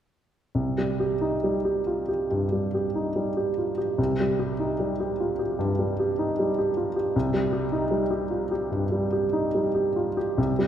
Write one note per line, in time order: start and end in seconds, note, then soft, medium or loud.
0.55 2.26 C2 soft
0.78 1.13 G3 soft
1.00 1.35 G4 soft
1.21 1.57 D#4 soft
1.44 1.78 G3 soft
1.65 2.00 G4 soft
1.87 2.08 F4 soft
2.08 2.43 G4 soft
2.31 2.65 G2 soft
2.52 2.87 G3 soft
2.75 3.08 G4 soft
2.95 3.29 D#4 soft
3.16 3.49 G3 soft
3.37 3.70 G4 soft
3.58 3.78 F4 soft
3.78 4.11 G4 soft
3.98 5.56 C2 soft
4.20 4.52 G3 soft
4.39 4.72 G4 soft
4.59 4.92 D#4 soft
4.80 5.12 G3 soft
5.00 5.32 G4 soft
5.20 5.40 F4 soft
5.39 5.72 G4 soft
5.59 5.91 G2 soft
5.79 6.11 G3 soft
6.00 6.31 G4 soft
6.19 6.50 D#4 soft
6.39 6.70 G3 soft
6.59 6.89 G4 soft
6.77 6.96 F4 soft
6.96 7.15 G4 soft
7.16 8.68 C2 soft
7.34 7.63 G3 soft
7.53 7.83 G4 soft
7.72 8.03 D#4 soft
7.91 8.23 G3 soft
8.11 8.43 G4 soft
8.30 8.51 F4 soft
8.51 8.84 G4 soft
8.71 9.05 G2 soft
8.92 9.25 G3 soft
9.12 9.46 G4 soft
9.33 9.66 D#4 soft
9.55 9.88 G3 soft
9.75 10.08 G4 soft
9.96 10.17 F4 soft
10.17 10.51 G4 soft
10.38 10.67 C2 soft
10.59 10.67 G3 soft